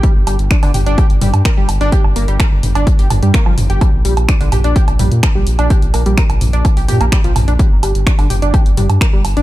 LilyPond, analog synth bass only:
\new Staff \with { instrumentName = "Analog synth bass" } { \clef bass \time 4/4 \key g \minor \tempo 4 = 127 r16 g,,16 g,,16 g,,16 r16 g,,16 g,,16 g,,16 r16 g,,16 g,,16 g,16 r16 g,,16 g,,16 g,,16 | r16 g,,16 g,,16 g,,16 r16 g,,16 g,,16 g,,16 r16 g,,16 g,,16 g,16 r16 g,,16 g,,16 g,,16 | r16 bes,,16 bes,,16 bes,,16 r16 bes,,16 bes,,16 bes,,16 r16 bes,,16 bes,,16 bes,16 r16 bes,,16 bes,,16 bes,,16 | r16 bes,,16 bes,,16 bes,,16 r16 bes,,16 bes,,16 bes,,16 r16 bes,,16 bes,16 bes,,16 r16 bes,,16 bes,,16 bes,,16 |
r16 g,,16 g,,16 g,,16 r16 g,,16 g,,16 g,,16 r16 g,,16 g,,16 g,16 r16 g,,16 g,,16 g,,16 | }